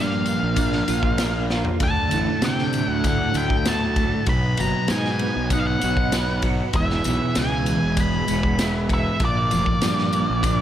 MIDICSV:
0, 0, Header, 1, 6, 480
1, 0, Start_track
1, 0, Tempo, 616016
1, 1409, Time_signature, 4, 2, 24, 8
1, 8270, End_track
2, 0, Start_track
2, 0, Title_t, "Lead electric guitar"
2, 0, Program_c, 0, 29
2, 0, Note_on_c, 0, 77, 75
2, 1135, Note_off_c, 0, 77, 0
2, 1430, Note_on_c, 0, 81, 72
2, 1910, Note_off_c, 0, 81, 0
2, 1913, Note_on_c, 0, 79, 74
2, 2256, Note_off_c, 0, 79, 0
2, 2256, Note_on_c, 0, 78, 74
2, 2389, Note_off_c, 0, 78, 0
2, 2392, Note_on_c, 0, 78, 78
2, 2606, Note_off_c, 0, 78, 0
2, 2629, Note_on_c, 0, 79, 77
2, 2868, Note_off_c, 0, 79, 0
2, 2871, Note_on_c, 0, 81, 87
2, 3311, Note_off_c, 0, 81, 0
2, 3347, Note_on_c, 0, 83, 96
2, 3586, Note_off_c, 0, 83, 0
2, 3589, Note_on_c, 0, 82, 79
2, 3824, Note_on_c, 0, 80, 86
2, 3828, Note_off_c, 0, 82, 0
2, 4268, Note_off_c, 0, 80, 0
2, 4306, Note_on_c, 0, 78, 74
2, 4351, Note_off_c, 0, 78, 0
2, 4361, Note_on_c, 0, 77, 62
2, 4410, Note_off_c, 0, 77, 0
2, 4417, Note_on_c, 0, 78, 70
2, 4989, Note_off_c, 0, 78, 0
2, 5267, Note_on_c, 0, 76, 78
2, 5754, Note_off_c, 0, 76, 0
2, 5754, Note_on_c, 0, 80, 94
2, 6236, Note_on_c, 0, 83, 95
2, 6238, Note_off_c, 0, 80, 0
2, 6965, Note_off_c, 0, 83, 0
2, 6965, Note_on_c, 0, 76, 84
2, 7195, Note_off_c, 0, 76, 0
2, 7207, Note_on_c, 0, 74, 70
2, 8270, Note_off_c, 0, 74, 0
2, 8270, End_track
3, 0, Start_track
3, 0, Title_t, "Transistor combo organ"
3, 0, Program_c, 1, 18
3, 0, Note_on_c, 1, 58, 57
3, 0, Note_on_c, 1, 62, 50
3, 0, Note_on_c, 1, 65, 53
3, 0, Note_on_c, 1, 70, 60
3, 1388, Note_off_c, 1, 65, 0
3, 1388, Note_off_c, 1, 70, 0
3, 1389, Note_off_c, 1, 58, 0
3, 1419, Note_on_c, 1, 57, 59
3, 1422, Note_on_c, 1, 69, 59
3, 1427, Note_on_c, 1, 54, 51
3, 3303, Note_off_c, 1, 62, 0
3, 3319, Note_off_c, 1, 57, 0
3, 3320, Note_off_c, 1, 69, 0
3, 3342, Note_on_c, 1, 71, 61
3, 3345, Note_on_c, 1, 59, 60
3, 3348, Note_on_c, 1, 63, 48
3, 5231, Note_off_c, 1, 54, 0
3, 5242, Note_off_c, 1, 63, 0
3, 5265, Note_on_c, 1, 68, 54
3, 5268, Note_on_c, 1, 64, 52
3, 7145, Note_off_c, 1, 71, 0
3, 7146, Note_off_c, 1, 59, 0
3, 7158, Note_off_c, 1, 68, 0
3, 7159, Note_off_c, 1, 64, 0
3, 7180, Note_on_c, 1, 65, 55
3, 7181, Note_on_c, 1, 70, 63
3, 7187, Note_on_c, 1, 58, 53
3, 7191, Note_on_c, 1, 50, 53
3, 8270, Note_off_c, 1, 50, 0
3, 8270, Note_off_c, 1, 58, 0
3, 8270, Note_off_c, 1, 65, 0
3, 8270, Note_off_c, 1, 70, 0
3, 8270, End_track
4, 0, Start_track
4, 0, Title_t, "Clean electric guitar"
4, 0, Program_c, 2, 27
4, 0, Note_on_c, 2, 46, 69
4, 0, Note_on_c, 2, 53, 58
4, 0, Note_on_c, 2, 62, 65
4, 199, Note_on_c, 2, 58, 55
4, 426, Note_off_c, 2, 62, 0
4, 436, Note_on_c, 2, 62, 66
4, 684, Note_on_c, 2, 65, 64
4, 690, Note_off_c, 2, 46, 0
4, 927, Note_off_c, 2, 53, 0
4, 931, Note_on_c, 2, 70, 66
4, 1160, Note_off_c, 2, 65, 0
4, 1170, Note_on_c, 2, 65, 60
4, 1404, Note_off_c, 2, 62, 0
4, 1406, Note_off_c, 2, 58, 0
4, 1410, Note_off_c, 2, 65, 0
4, 1411, Note_off_c, 2, 70, 0
4, 1417, Note_on_c, 2, 38, 65
4, 1653, Note_on_c, 2, 45, 64
4, 1895, Note_on_c, 2, 50, 67
4, 2128, Note_off_c, 2, 45, 0
4, 2138, Note_on_c, 2, 45, 59
4, 2375, Note_off_c, 2, 50, 0
4, 2385, Note_on_c, 2, 50, 70
4, 2616, Note_off_c, 2, 38, 0
4, 2625, Note_on_c, 2, 57, 67
4, 2865, Note_on_c, 2, 66, 66
4, 3093, Note_off_c, 2, 57, 0
4, 3103, Note_on_c, 2, 57, 60
4, 3336, Note_off_c, 2, 45, 0
4, 3338, Note_off_c, 2, 57, 0
4, 3339, Note_off_c, 2, 66, 0
4, 3340, Note_off_c, 2, 50, 0
4, 3349, Note_on_c, 2, 47, 63
4, 3584, Note_on_c, 2, 54, 64
4, 3824, Note_on_c, 2, 63, 63
4, 4062, Note_on_c, 2, 59, 61
4, 4295, Note_off_c, 2, 63, 0
4, 4304, Note_on_c, 2, 63, 74
4, 4537, Note_on_c, 2, 66, 65
4, 4542, Note_off_c, 2, 47, 0
4, 4775, Note_on_c, 2, 71, 68
4, 4779, Note_off_c, 2, 54, 0
4, 5007, Note_off_c, 2, 66, 0
4, 5017, Note_on_c, 2, 66, 64
4, 5254, Note_off_c, 2, 71, 0
4, 5255, Note_off_c, 2, 66, 0
4, 5258, Note_off_c, 2, 59, 0
4, 5259, Note_off_c, 2, 63, 0
4, 5259, Note_on_c, 2, 40, 68
4, 5498, Note_on_c, 2, 47, 67
4, 5746, Note_on_c, 2, 56, 67
4, 5984, Note_on_c, 2, 52, 57
4, 6212, Note_off_c, 2, 56, 0
4, 6221, Note_on_c, 2, 56, 70
4, 6455, Note_off_c, 2, 40, 0
4, 6467, Note_on_c, 2, 59, 65
4, 6694, Note_off_c, 2, 47, 0
4, 6705, Note_on_c, 2, 64, 63
4, 6930, Note_off_c, 2, 59, 0
4, 6939, Note_on_c, 2, 59, 63
4, 7175, Note_off_c, 2, 59, 0
4, 7176, Note_off_c, 2, 56, 0
4, 7177, Note_off_c, 2, 52, 0
4, 7177, Note_on_c, 2, 46, 65
4, 7178, Note_off_c, 2, 64, 0
4, 7418, Note_on_c, 2, 53, 62
4, 7655, Note_on_c, 2, 62, 69
4, 7885, Note_on_c, 2, 58, 59
4, 8112, Note_off_c, 2, 62, 0
4, 8122, Note_on_c, 2, 62, 67
4, 8270, Note_off_c, 2, 46, 0
4, 8270, Note_off_c, 2, 53, 0
4, 8270, Note_off_c, 2, 58, 0
4, 8270, Note_off_c, 2, 62, 0
4, 8270, End_track
5, 0, Start_track
5, 0, Title_t, "Fingered electric bass"
5, 0, Program_c, 3, 33
5, 0, Note_on_c, 3, 43, 90
5, 271, Note_off_c, 3, 43, 0
5, 332, Note_on_c, 3, 34, 74
5, 636, Note_off_c, 3, 34, 0
5, 691, Note_on_c, 3, 34, 72
5, 1302, Note_off_c, 3, 34, 0
5, 1410, Note_on_c, 3, 38, 84
5, 1614, Note_off_c, 3, 38, 0
5, 1655, Note_on_c, 3, 33, 69
5, 1755, Note_off_c, 3, 33, 0
5, 1882, Note_on_c, 3, 48, 86
5, 2192, Note_off_c, 3, 48, 0
5, 2243, Note_on_c, 3, 38, 73
5, 2553, Note_off_c, 3, 38, 0
5, 2606, Note_on_c, 3, 38, 74
5, 3220, Note_off_c, 3, 38, 0
5, 3327, Note_on_c, 3, 35, 82
5, 3533, Note_off_c, 3, 35, 0
5, 3576, Note_on_c, 3, 30, 74
5, 3677, Note_off_c, 3, 30, 0
5, 3818, Note_on_c, 3, 44, 87
5, 4122, Note_off_c, 3, 44, 0
5, 4179, Note_on_c, 3, 35, 81
5, 4483, Note_off_c, 3, 35, 0
5, 4542, Note_on_c, 3, 35, 70
5, 5149, Note_off_c, 3, 35, 0
5, 5249, Note_on_c, 3, 28, 86
5, 5455, Note_off_c, 3, 28, 0
5, 5501, Note_on_c, 3, 35, 77
5, 5599, Note_off_c, 3, 35, 0
5, 5741, Note_on_c, 3, 37, 89
5, 6043, Note_off_c, 3, 37, 0
5, 6102, Note_on_c, 3, 28, 76
5, 6404, Note_off_c, 3, 28, 0
5, 6461, Note_on_c, 3, 28, 75
5, 7067, Note_off_c, 3, 28, 0
5, 7168, Note_on_c, 3, 34, 77
5, 7373, Note_off_c, 3, 34, 0
5, 7423, Note_on_c, 3, 29, 76
5, 7519, Note_off_c, 3, 29, 0
5, 7668, Note_on_c, 3, 43, 81
5, 7965, Note_off_c, 3, 43, 0
5, 8022, Note_on_c, 3, 34, 72
5, 8270, Note_off_c, 3, 34, 0
5, 8270, End_track
6, 0, Start_track
6, 0, Title_t, "Drums"
6, 199, Note_on_c, 9, 51, 50
6, 208, Note_on_c, 9, 54, 66
6, 277, Note_off_c, 9, 51, 0
6, 286, Note_off_c, 9, 54, 0
6, 439, Note_on_c, 9, 51, 78
6, 440, Note_on_c, 9, 36, 70
6, 447, Note_on_c, 9, 54, 69
6, 517, Note_off_c, 9, 51, 0
6, 518, Note_off_c, 9, 36, 0
6, 524, Note_off_c, 9, 54, 0
6, 564, Note_on_c, 9, 38, 33
6, 642, Note_off_c, 9, 38, 0
6, 683, Note_on_c, 9, 51, 58
6, 688, Note_on_c, 9, 54, 71
6, 761, Note_off_c, 9, 51, 0
6, 766, Note_off_c, 9, 54, 0
6, 801, Note_on_c, 9, 36, 75
6, 879, Note_off_c, 9, 36, 0
6, 919, Note_on_c, 9, 51, 77
6, 923, Note_on_c, 9, 38, 101
6, 929, Note_on_c, 9, 54, 86
6, 997, Note_off_c, 9, 51, 0
6, 1001, Note_off_c, 9, 38, 0
6, 1007, Note_off_c, 9, 54, 0
6, 1169, Note_on_c, 9, 38, 55
6, 1171, Note_on_c, 9, 54, 23
6, 1247, Note_off_c, 9, 38, 0
6, 1249, Note_off_c, 9, 54, 0
6, 1284, Note_on_c, 9, 43, 70
6, 1361, Note_off_c, 9, 43, 0
6, 1402, Note_on_c, 9, 51, 72
6, 1404, Note_on_c, 9, 36, 91
6, 1408, Note_on_c, 9, 54, 26
6, 1480, Note_off_c, 9, 51, 0
6, 1482, Note_off_c, 9, 36, 0
6, 1486, Note_off_c, 9, 54, 0
6, 1644, Note_on_c, 9, 51, 59
6, 1652, Note_on_c, 9, 54, 74
6, 1722, Note_off_c, 9, 51, 0
6, 1730, Note_off_c, 9, 54, 0
6, 1884, Note_on_c, 9, 51, 63
6, 1888, Note_on_c, 9, 38, 91
6, 1891, Note_on_c, 9, 54, 92
6, 1962, Note_off_c, 9, 51, 0
6, 1966, Note_off_c, 9, 38, 0
6, 1969, Note_off_c, 9, 54, 0
6, 2014, Note_on_c, 9, 38, 33
6, 2092, Note_off_c, 9, 38, 0
6, 2125, Note_on_c, 9, 54, 66
6, 2131, Note_on_c, 9, 51, 47
6, 2203, Note_off_c, 9, 54, 0
6, 2209, Note_off_c, 9, 51, 0
6, 2369, Note_on_c, 9, 36, 78
6, 2370, Note_on_c, 9, 51, 72
6, 2372, Note_on_c, 9, 54, 61
6, 2446, Note_off_c, 9, 36, 0
6, 2448, Note_off_c, 9, 51, 0
6, 2450, Note_off_c, 9, 54, 0
6, 2604, Note_on_c, 9, 54, 72
6, 2609, Note_on_c, 9, 51, 53
6, 2682, Note_off_c, 9, 54, 0
6, 2687, Note_off_c, 9, 51, 0
6, 2728, Note_on_c, 9, 36, 70
6, 2806, Note_off_c, 9, 36, 0
6, 2847, Note_on_c, 9, 51, 69
6, 2848, Note_on_c, 9, 54, 89
6, 2851, Note_on_c, 9, 38, 103
6, 2925, Note_off_c, 9, 51, 0
6, 2926, Note_off_c, 9, 54, 0
6, 2929, Note_off_c, 9, 38, 0
6, 3086, Note_on_c, 9, 51, 53
6, 3087, Note_on_c, 9, 36, 78
6, 3101, Note_on_c, 9, 54, 23
6, 3164, Note_off_c, 9, 51, 0
6, 3165, Note_off_c, 9, 36, 0
6, 3179, Note_off_c, 9, 54, 0
6, 3322, Note_on_c, 9, 51, 67
6, 3327, Note_on_c, 9, 36, 91
6, 3335, Note_on_c, 9, 54, 25
6, 3400, Note_off_c, 9, 51, 0
6, 3405, Note_off_c, 9, 36, 0
6, 3412, Note_off_c, 9, 54, 0
6, 3563, Note_on_c, 9, 51, 60
6, 3583, Note_on_c, 9, 54, 66
6, 3641, Note_off_c, 9, 51, 0
6, 3661, Note_off_c, 9, 54, 0
6, 3801, Note_on_c, 9, 51, 69
6, 3805, Note_on_c, 9, 38, 100
6, 3817, Note_on_c, 9, 54, 90
6, 3879, Note_off_c, 9, 51, 0
6, 3883, Note_off_c, 9, 38, 0
6, 3895, Note_off_c, 9, 54, 0
6, 3931, Note_on_c, 9, 38, 31
6, 4009, Note_off_c, 9, 38, 0
6, 4046, Note_on_c, 9, 51, 52
6, 4124, Note_off_c, 9, 51, 0
6, 4287, Note_on_c, 9, 51, 77
6, 4288, Note_on_c, 9, 36, 73
6, 4297, Note_on_c, 9, 54, 73
6, 4365, Note_off_c, 9, 51, 0
6, 4366, Note_off_c, 9, 36, 0
6, 4375, Note_off_c, 9, 54, 0
6, 4530, Note_on_c, 9, 51, 56
6, 4533, Note_on_c, 9, 54, 73
6, 4607, Note_off_c, 9, 51, 0
6, 4611, Note_off_c, 9, 54, 0
6, 4650, Note_on_c, 9, 36, 73
6, 4727, Note_off_c, 9, 36, 0
6, 4769, Note_on_c, 9, 51, 75
6, 4773, Note_on_c, 9, 38, 102
6, 4775, Note_on_c, 9, 54, 94
6, 4847, Note_off_c, 9, 51, 0
6, 4851, Note_off_c, 9, 38, 0
6, 4853, Note_off_c, 9, 54, 0
6, 5004, Note_on_c, 9, 51, 62
6, 5008, Note_on_c, 9, 36, 77
6, 5013, Note_on_c, 9, 54, 25
6, 5082, Note_off_c, 9, 51, 0
6, 5086, Note_off_c, 9, 36, 0
6, 5091, Note_off_c, 9, 54, 0
6, 5246, Note_on_c, 9, 51, 70
6, 5250, Note_on_c, 9, 36, 89
6, 5255, Note_on_c, 9, 54, 28
6, 5324, Note_off_c, 9, 51, 0
6, 5327, Note_off_c, 9, 36, 0
6, 5333, Note_off_c, 9, 54, 0
6, 5377, Note_on_c, 9, 38, 33
6, 5455, Note_off_c, 9, 38, 0
6, 5487, Note_on_c, 9, 54, 77
6, 5494, Note_on_c, 9, 51, 58
6, 5565, Note_off_c, 9, 54, 0
6, 5571, Note_off_c, 9, 51, 0
6, 5729, Note_on_c, 9, 51, 73
6, 5733, Note_on_c, 9, 38, 99
6, 5734, Note_on_c, 9, 54, 96
6, 5807, Note_off_c, 9, 51, 0
6, 5811, Note_off_c, 9, 38, 0
6, 5812, Note_off_c, 9, 54, 0
6, 5970, Note_on_c, 9, 51, 53
6, 5975, Note_on_c, 9, 54, 70
6, 6047, Note_off_c, 9, 51, 0
6, 6053, Note_off_c, 9, 54, 0
6, 6208, Note_on_c, 9, 54, 72
6, 6209, Note_on_c, 9, 51, 73
6, 6210, Note_on_c, 9, 36, 77
6, 6286, Note_off_c, 9, 54, 0
6, 6287, Note_off_c, 9, 51, 0
6, 6288, Note_off_c, 9, 36, 0
6, 6451, Note_on_c, 9, 51, 47
6, 6451, Note_on_c, 9, 54, 74
6, 6528, Note_off_c, 9, 54, 0
6, 6529, Note_off_c, 9, 51, 0
6, 6571, Note_on_c, 9, 36, 73
6, 6649, Note_off_c, 9, 36, 0
6, 6690, Note_on_c, 9, 51, 75
6, 6694, Note_on_c, 9, 38, 103
6, 6695, Note_on_c, 9, 54, 94
6, 6768, Note_off_c, 9, 51, 0
6, 6772, Note_off_c, 9, 38, 0
6, 6773, Note_off_c, 9, 54, 0
6, 6931, Note_on_c, 9, 36, 78
6, 6933, Note_on_c, 9, 51, 57
6, 6936, Note_on_c, 9, 54, 26
6, 7008, Note_off_c, 9, 36, 0
6, 7011, Note_off_c, 9, 51, 0
6, 7014, Note_off_c, 9, 54, 0
6, 7167, Note_on_c, 9, 51, 65
6, 7170, Note_on_c, 9, 36, 92
6, 7173, Note_on_c, 9, 54, 27
6, 7245, Note_off_c, 9, 51, 0
6, 7248, Note_off_c, 9, 36, 0
6, 7251, Note_off_c, 9, 54, 0
6, 7409, Note_on_c, 9, 51, 55
6, 7413, Note_on_c, 9, 54, 71
6, 7487, Note_off_c, 9, 51, 0
6, 7490, Note_off_c, 9, 54, 0
6, 7528, Note_on_c, 9, 36, 65
6, 7606, Note_off_c, 9, 36, 0
6, 7647, Note_on_c, 9, 51, 72
6, 7651, Note_on_c, 9, 38, 91
6, 7658, Note_on_c, 9, 54, 86
6, 7725, Note_off_c, 9, 51, 0
6, 7729, Note_off_c, 9, 38, 0
6, 7736, Note_off_c, 9, 54, 0
6, 7778, Note_on_c, 9, 38, 30
6, 7856, Note_off_c, 9, 38, 0
6, 7890, Note_on_c, 9, 54, 66
6, 7894, Note_on_c, 9, 51, 50
6, 7968, Note_off_c, 9, 54, 0
6, 7971, Note_off_c, 9, 51, 0
6, 8127, Note_on_c, 9, 36, 80
6, 8130, Note_on_c, 9, 51, 79
6, 8132, Note_on_c, 9, 54, 64
6, 8205, Note_off_c, 9, 36, 0
6, 8208, Note_off_c, 9, 51, 0
6, 8210, Note_off_c, 9, 54, 0
6, 8270, End_track
0, 0, End_of_file